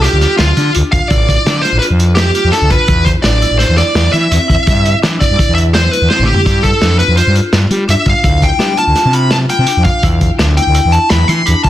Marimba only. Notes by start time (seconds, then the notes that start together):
0.04 F4
0.22 F4
0.57 F4
0.75 D4
0.93 F4
1.11 E4
1.46 D4
1.64 F4
1.82 F4
1.99 F4
2.35 F4
2.52 D4
2.70 F4
2.88 E4
3.24 D4
3.42 E4
3.59 E4
3.78 E4
4.13 E4
4.31 C4
4.48 E4
4.66 E4
5.02 D4
5.19 E4
5.37 E4
5.55 E4
5.91 E4
6.09 C4
6.27 E4
6.45 E4
6.81 D4
6.99 F4
7.17 F4
7.35 F4
7.71 F4
7.88 D4
8.06 F4
8.24 E4
8.59 D4
8.78 F4
8.96 F4
9.13 F4
9.49 F4
9.68 D4
9.85 F4
10.04 E4
10.39 D4
10.57 E4
10.75 E4
10.93 E4
11.29 E4
11.46 D4
11.64 F4